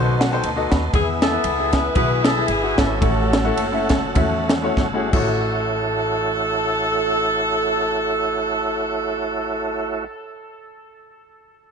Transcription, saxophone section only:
Already playing: A3 C#4 F#4
0.94 B3 E4 G#4
1.21 E4 A4
1.72 B4
1.95 E4 G#4 B4
2.25 A4
2.48 G#4
2.79 C#4 F#4 A4
5.13 A4

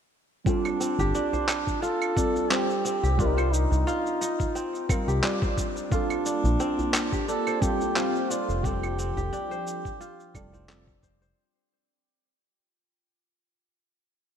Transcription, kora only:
0.47 C4
0.80 C4
0.99 G4
1.15 D4
1.33 C5
1.82 F4
2.16 D4
2.51 C4
2.85 C4
3.03 G4
3.19 D4
3.37 C5
3.87 F4
4.21 D#4
4.55 C4
4.89 C4
5.08 G4
5.24 D4
5.42 C5
5.92 F4
6.26 D4
6.60 C4
6.94 C4
7.13 G4
7.28 D4
7.47 C5
7.96 F4
8.30 D4
8.64 C4
8.99 C4
9.17 G4
9.33 D4
9.51 C5
10.01 F4
10.35 D4
10.53 C4
10.69 A4
11.03 C5
11.22 C5

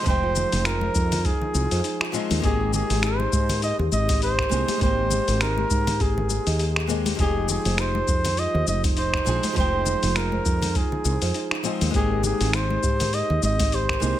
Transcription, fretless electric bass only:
0.06 F1
0.53 F1
0.95 F2
1.55 C2
1.72 F2
2.31 D#2
2.44 G#1
2.90 G#1
3.33 G#2
3.79 D#2
3.92 G#1
4.52 C2
4.81 G#1
5.28 G#1
5.71 G#2
6.00 G#1
6.47 D#2
7.19 F1
7.65 F1
8.08 F2
8.54 D#2
8.67 F1
9.27 A#1
9.57 F1
10.03 F1
10.46 F2
11.05 C2
11.22 F2
11.81 D#2
11.94 G#1
12.41 G#1
12.83 G#2
13.30 D#2
13.43 G#1
14.02 C2

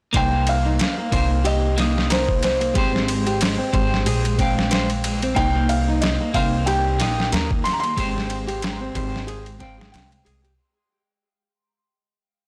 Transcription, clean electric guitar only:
0.13 A#3 D#4 C5
1.11 A#3 D#4 C5
1.77 A#3 D#4 D#5
2.74 G#3 G4 C5
3.73 G#3 G4 C5
4.38 G#3 F5 G5
5.35 A#3 D#4 C5
6.34 A#3 D#4 C5
6.99 A#3 D#4 D#5
7.97 G#3 G4 C5
8.95 G#3 G4 C5
9.59 G#3 F5 G5

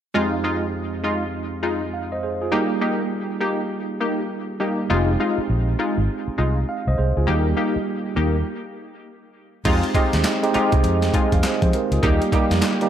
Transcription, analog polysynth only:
0.14 G#3 D#4 F4
0.44 G#3 D#4 F4
1.03 G#3 D#4 F4
1.63 G#3 D#4 F4
2.52 A#3 D#4 G4
2.81 A#3 D#4 G4
3.40 A#3 D#4 G4
4.01 A#3 D#4 G4
4.60 A#3 D#4 G4
4.90 G#3 D#4 F4
5.20 G#3 D#4 F4
5.79 G#3 D#4 F4
6.38 G#3 D#4 F4
7.27 A#3 D#4 G4
7.57 A#3 D#4 G4
8.16 A#3 D#4 G4
9.65 G#3 D#4 F4
9.94 G#3 D#4 F4
10.54 G#3 D#4 F4
11.14 G#3 D#4 F4
12.03 A#3 D#4 G4
12.32 A#3 D#4 G4

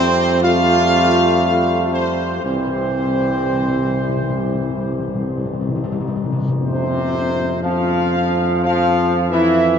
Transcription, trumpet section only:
Already playing: C5
0.43 F5
1.93 C5
2.45 C5
6.58 C5
7.63 F5
8.64 F5
9.31 E5

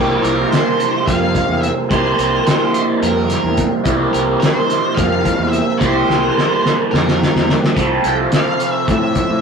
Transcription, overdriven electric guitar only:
Already playing: C3 G3 A#3 E4
0.00 G4
1.89 C3 G3 A#3 E4 G4
3.84 C3 G3 A#3 E4 G4
5.80 C3 G3 A#3 E4 G4
7.75 C3 F3 C4 F4 A4

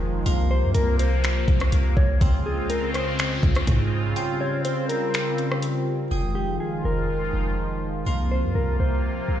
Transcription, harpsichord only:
Already playing: G#4 G5 D#6
0.26 A#4 F5 C6
2.21 C4 C6
4.16 C5 G5
6.11 G#4 G5 D#6
8.07 A#4 F5 C6

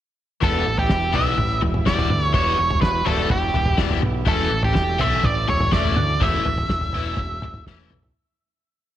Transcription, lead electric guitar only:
0.44 A4
0.79 G4
1.15 E5
1.86 D5
2.23 C#5
2.34 C#5
2.81 B4
3.06 A4
3.31 G4
4.28 A4
4.64 G4
5.01 E5
5.25 D5
5.49 C#5
5.73 D5
6.22 E5

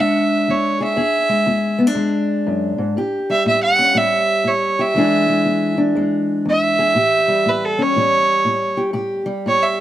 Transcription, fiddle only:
0.00 E5
0.50 C#5
0.84 E5
3.31 E5
3.48 E5
3.63 F#5
3.98 E5
4.48 C#5
4.81 E5
6.50 E5
7.49 B4
7.65 A4
7.82 C#5
9.48 C#5
9.63 E5

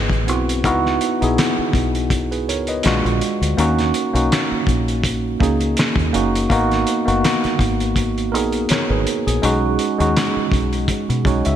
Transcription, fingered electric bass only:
0.10 A1
0.29 B1
0.65 C#2
1.22 A#1
1.59 muted fingered electric bass stroke
1.74 B1
2.49 C#2
2.85 A#1
3.05 A#1
3.41 D2
3.58 D#2
4.15 B1
4.52 muted fingered electric bass stroke
4.68 A#1
5.41 C#2
5.96 D#2
6.15 F#1
6.51 G#1
7.08 F#1
7.44 muted fingered electric bass stroke
7.60 G#1
8.34 A#1
8.70 muted fingered electric bass stroke
8.90 G#1
9.27 A#1
9.43 B1
10.00 D#2
10.36 muted fingered electric bass stroke
10.52 B1
11.10 B2
11.26 B1
11.46 C#2

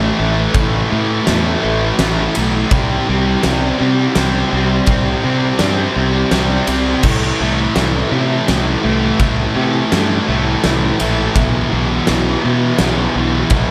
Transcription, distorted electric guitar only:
Already playing: A2 E3 A3
0.19 A2 E3 A3
0.54 A2 E3 A3
0.91 A2 E3 A3
1.26 A2 E3 A3
1.62 A2 E3 A3
1.99 A2 E3 A3
2.36 A2 E3 A3
2.71 C3 G3 C4
3.08 C3 G3 C4
3.43 C3 G3 C4
3.79 C3 G3 C4
4.15 C3 G3 C4
4.51 C3 G3 C4
4.87 C3 G3 C4
5.23 C3 G3 C4
5.59 C3 G3 C4
5.96 C3 G3 C4
6.32 C3 G3 C4
6.68 C3 G3 C4
7.05 A2 E3 A3
7.41 A2 E3 A3
7.75 A2 E3 A3
8.11 A2 E3 A3
8.47 A2 E3 A3
8.83 A2 E3 A3
9.21 A2 E3 A3
9.55 A2 E3 A3
9.92 A2 E3 A3
10.27 A2 E3 A3
10.63 A2 E3 A3
10.99 A2 E3 A3
11.35 E2 B2 E3
11.70 E2 B2 E3
12.07 E2 B2 E3
12.43 E2 B2 E3
12.80 E2 B2 E3
13.15 E2 B2 E3
13.51 E2 B2 E3

